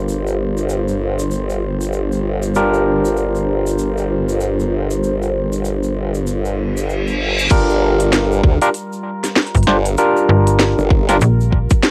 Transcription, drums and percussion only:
0.09 shaker
0.27 shaker
0.57 shaker
0.69 shaker
0.88 shaker
1.19 shaker
1.31 shaker
1.50 shaker
1.81 shaker
1.93 shaker
2.12 shaker
2.42 shaker
2.55 shaker
2.74 shaker
3.05 shaker
3.17 shaker
3.35 shaker
3.67 shaker
3.78 shaker
3.98 shaker
4.29 shaker
4.40 shaker
4.60 shaker
4.91 shaker
5.03 shaker
5.22 shaker
5.52 shaker
5.65 shaker
5.83 shaker
6.14 shaker
6.27 shaker
6.45 shaker
6.77 shaker
6.89 shaker
7.07 shaker
7.39 shaker
7.51 kick, closed hi-hat, crash, shaker
7.69 shaker
8.00 closed hi-hat, shaker
8.13 snare, closed hi-hat, shaker
8.32 shaker
8.44 kick
8.62 closed hi-hat, shaker
8.74 closed hi-hat, shaker
8.93 shaker
9.24 snare, closed hi-hat, shaker
9.36 snare, closed hi-hat, shaker
9.42 closed hi-hat
9.46 closed hi-hat
9.54 kick, closed hi-hat, shaker
9.57 closed hi-hat
9.63 closed hi-hat
9.67 snare
9.85 closed hi-hat, shaker
9.97 closed hi-hat, shaker
10.17 shaker
10.47 closed hi-hat, shaker
10.60 snare, closed hi-hat, shaker
10.79 shaker
10.91 kick
11.09 snare, closed hi-hat, shaker
11.21 closed hi-hat, shaker
11.41 shaker
11.52 kick
11.70 kick, closed hi-hat, shaker
11.83 snare, closed hi-hat, shaker

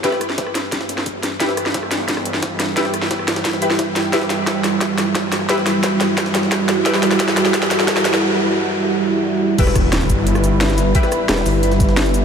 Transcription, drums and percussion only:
0.04 kick, snare, closed hi-hat
0.12 cross-stick, snare
0.21 cross-stick, closed hi-hat
0.29 snare
0.38 kick, snare, closed hi-hat
0.47 cross-stick
0.55 snare, closed hi-hat
0.72 kick, snare, closed hi-hat
0.81 snare
0.89 snare, closed hi-hat
0.98 snare
1.06 kick, closed hi-hat
1.23 snare, closed hi-hat
1.40 kick, snare, closed hi-hat
1.49 snare
1.57 cross-stick, closed hi-hat
1.66 snare
1.74 kick, snare, closed hi-hat
1.83 cross-stick
1.91 snare, closed hi-hat
2.08 kick, snare, closed hi-hat
2.17 cross-stick
2.25 closed hi-hat
2.34 snare
2.43 kick, snare, closed hi-hat
2.60 snare, closed hi-hat
2.77 kick, snare, closed hi-hat
2.85 cross-stick, snare
2.94 cross-stick, closed hi-hat
3.02 snare
3.11 kick, snare, closed hi-hat
3.19 cross-stick
3.28 snare, closed hi-hat
3.36 snare, closed hi-hat
3.45 kick, snare, closed hi-hat
3.53 snare
3.62 snare, closed hi-hat
3.70 snare
3.79 kick, snare, closed hi-hat
3.96 snare, closed hi-hat
4.13 kick, snare, closed hi-hat
4.22 snare
4.30 snare, closed hi-hat
4.47 kick, snare, closed hi-hat
4.64 snare, closed hi-hat
4.81 kick, snare, closed hi-hat
4.98 snare, closed hi-hat
5.15 kick, snare, closed hi-hat
5.32 snare, closed hi-hat
5.49 kick, snare, closed hi-hat
5.58 snare
5.66 snare, closed hi-hat
5.83 kick, snare, closed hi-hat
6.01 snare, closed hi-hat
6.18 kick, snare, closed hi-hat
6.26 snare
6.35 snare, closed hi-hat
6.43 snare
6.52 kick, snare, closed hi-hat
6.69 snare, closed hi-hat
6.86 kick, snare, closed hi-hat
6.94 snare
7.03 snare, closed hi-hat
7.11 snare
7.20 kick, snare, closed hi-hat
7.28 snare
7.37 snare, closed hi-hat
7.45 snare
7.54 kick, snare, closed hi-hat
7.62 snare
7.71 snare, closed hi-hat
7.79 snare
7.88 kick, snare, closed hi-hat
7.97 snare
8.05 snare, closed hi-hat
8.14 snare
9.58 kick, closed hi-hat, crash
9.67 cross-stick, snare, shaker
9.75 kick, cross-stick, closed hi-hat, shaker
9.93 snare, closed hi-hat
10.01 cross-stick, shaker
10.10 kick, closed hi-hat, shaker
10.27 closed hi-hat
10.35 cross-stick, shaker
10.44 closed hi-hat, shaker
10.61 snare, closed hi-hat
10.69 snare, shaker
10.78 snare, closed hi-hat, shaker
10.95 kick, closed hi-hat
11.03 cross-stick, snare, shaker
11.12 cross-stick, closed hi-hat, shaker
11.29 snare, closed hi-hat
11.37 cross-stick, shaker
11.46 snare, closed hi-hat, open hi-hat, shaker
11.63 closed hi-hat
11.72 snare, shaker
11.80 kick, snare, closed hi-hat, shaker
11.89 snare
11.97 snare, closed hi-hat
12.06 shaker
12.14 closed hi-hat, shaker

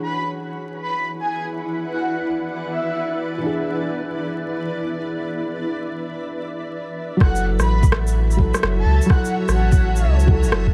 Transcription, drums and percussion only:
7.20 kick, cross-stick
7.36 shaker
7.60 cross-stick, shaker
7.83 kick, shaker
7.92 cross-stick
8.07 shaker
8.31 shaker
8.39 kick
8.54 cross-stick, shaker
8.63 cross-stick
9.02 shaker
9.10 kick, cross-stick
9.25 shaker
9.49 cross-stick, shaker
9.72 kick, shaker
9.96 shaker
10.20 shaker
10.28 kick
10.44 shaker
10.52 cross-stick
10.67 kick

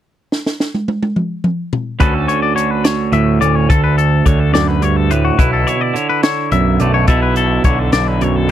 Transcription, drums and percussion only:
0.32 snare
0.46 snare
0.60 snare
0.74 high tom
0.88 high tom
1.03 high tom
1.16 mid tom
1.44 mid tom
1.73 floor tom
2.00 kick, closed hi-hat
2.29 closed hi-hat
2.57 closed hi-hat
2.85 snare, closed hi-hat
3.13 closed hi-hat
3.42 closed hi-hat
3.70 kick, closed hi-hat
3.98 closed hi-hat
4.26 kick, closed hi-hat
4.55 snare, closed hi-hat
4.82 closed hi-hat
5.11 closed hi-hat
5.39 kick, closed hi-hat
5.68 closed hi-hat
5.96 closed hi-hat
6.23 snare, closed hi-hat
6.52 closed hi-hat
6.80 closed hi-hat
7.08 kick, closed hi-hat
7.36 closed hi-hat
7.64 kick, closed hi-hat
7.92 snare, closed hi-hat
8.21 closed hi-hat

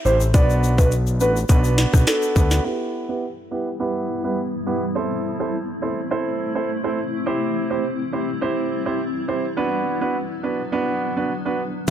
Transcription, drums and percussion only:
0.06 shaker
0.21 shaker
0.34 kick, closed hi-hat, shaker
0.50 shaker
0.64 shaker
0.78 kick, shaker
0.92 closed hi-hat, shaker
1.07 shaker
1.20 shaker
1.37 shaker
1.49 kick, closed hi-hat, shaker
1.64 shaker
1.78 snare, shaker
1.94 kick, cross-stick, shaker
2.07 finger snap, snare, closed hi-hat, shaker
2.22 shaker
2.36 kick, shaker
2.51 snare, shaker

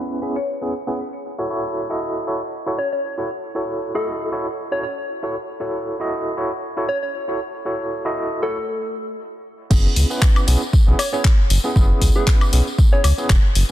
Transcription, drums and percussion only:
9.71 kick, tambourine, crash
9.96 open hi-hat, tambourine
10.11 tambourine
10.22 kick, clap, tambourine
10.36 tambourine, high woodblock
10.48 open hi-hat, tambourine
10.62 tambourine
10.73 kick, tambourine
10.99 open hi-hat, tambourine, high woodblock
11.14 tambourine
11.25 kick, clap, tambourine
11.50 open hi-hat, tambourine
11.64 tambourine
11.76 kick, tambourine
12.02 kick, open hi-hat, tambourine
12.15 tambourine
12.27 kick, clap, tambourine
12.41 tambourine, high woodblock
12.53 open hi-hat, tambourine
12.67 tambourine
12.78 kick, tambourine
13.04 open hi-hat, tambourine, high woodblock
13.18 tambourine
13.30 kick, clap, tambourine
13.55 open hi-hat, tambourine

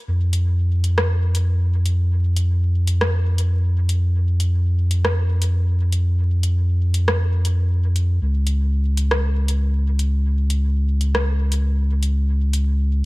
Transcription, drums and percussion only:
0.33 closed hi-hat
0.84 closed hi-hat
0.98 cross-stick
1.35 closed hi-hat
1.86 closed hi-hat
2.36 closed hi-hat
2.87 closed hi-hat
3.01 cross-stick
3.38 closed hi-hat
3.89 closed hi-hat
4.40 closed hi-hat
4.91 closed hi-hat
5.05 cross-stick
5.42 closed hi-hat
5.92 closed hi-hat
6.43 closed hi-hat
6.94 closed hi-hat
7.08 cross-stick
7.45 closed hi-hat
7.96 closed hi-hat
8.47 closed hi-hat
8.97 closed hi-hat
9.11 cross-stick
9.48 closed hi-hat
9.99 closed hi-hat
10.50 closed hi-hat
11.01 closed hi-hat
11.15 cross-stick
11.52 closed hi-hat
12.03 closed hi-hat
12.53 closed hi-hat

